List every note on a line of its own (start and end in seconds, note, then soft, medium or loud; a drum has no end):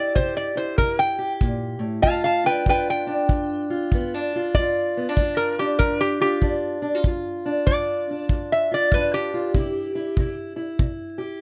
0.00 0.11 C3 medium
0.00 0.54 E4 medium
0.00 0.15 G4 medium
0.00 0.14 D5 medium
0.15 0.74 C3 medium
0.15 1.18 G4 medium
0.15 0.36 C5 medium
0.15 kick medium
0.37 0.57 D5 medium
0.55 2.01 E4 medium
0.55 0.77 C5 medium
0.78 1.37 C3 medium
0.78 0.98 A#4 medium
0.78 kick medium
0.99 1.32 G5 loud
1.18 2.05 G4 medium
1.41 1.79 A#2 medium
1.41 kick medium
1.79 2.03 A2 medium
2.02 2.62 G2 medium
2.02 2.67 F4 medium
2.02 2.23 F5 medium
2.02 2.23 A5 medium
2.02 kick medium
2.24 2.44 F5 medium
2.24 2.45 A5 medium
2.44 3.06 D4 medium
2.44 2.65 B4 medium
2.44 2.66 G5 medium
2.66 3.25 G2 medium
2.66 3.70 F4 medium
2.66 2.87 B4 medium
2.66 2.89 G5 medium
2.66 kick medium
2.90 4.10 G5 loud
3.07 3.94 D4 medium
3.29 3.88 G2 medium
3.29 kick medium
3.70 4.35 F4 medium
3.92 4.51 G2 medium
3.92 4.14 B3 medium
3.92 kick medium
4.14 4.56 D4 medium
4.36 4.58 F4 medium
4.55 5.14 G2 medium
4.55 5.35 D5 loud
4.55 kick medium
4.59 5.19 F4 medium
4.97 5.09 B3 medium
5.09 5.58 D4 medium
5.17 5.76 G2 medium
5.17 kick medium
5.21 6.19 F4 medium
5.37 5.58 A#4 medium
5.59 6.41 D4 medium
5.59 5.79 G4 medium
5.79 6.39 G2 medium
5.79 5.99 A#4 medium
5.79 kick medium
6.01 6.20 G4 medium
6.20 6.82 F4 medium
6.20 6.54 G4 loud
6.42 7.00 G2 medium
6.42 6.81 D4 medium
6.42 kick medium
6.82 6.95 D4 medium
6.95 7.05 F4 medium
7.04 7.64 G2 medium
7.04 7.68 F4 medium
7.04 kick medium
7.46 8.07 D4 medium
7.67 8.25 G2 medium
7.67 8.69 F4 medium
7.67 8.48 D5 medium
7.67 kick medium
8.11 8.94 D4 medium
8.29 8.89 G2 medium
8.29 kick medium
8.52 8.71 E5 medium
8.71 9.32 F4 medium
8.71 8.93 D5 medium
8.92 9.51 G2 medium
8.92 9.53 D4 medium
8.92 9.13 B4 medium
8.92 kick medium
9.14 10.34 G4 medium
9.34 9.53 F4 medium
9.54 10.12 C3 medium
9.54 9.94 E4 medium
9.54 kick medium
9.95 10.18 E4 medium
10.17 10.75 C3 medium
10.17 10.55 E4 medium
10.17 kick medium
10.56 11.41 E4 medium
10.79 11.37 C3 medium
10.79 kick medium
11.18 11.41 G4 medium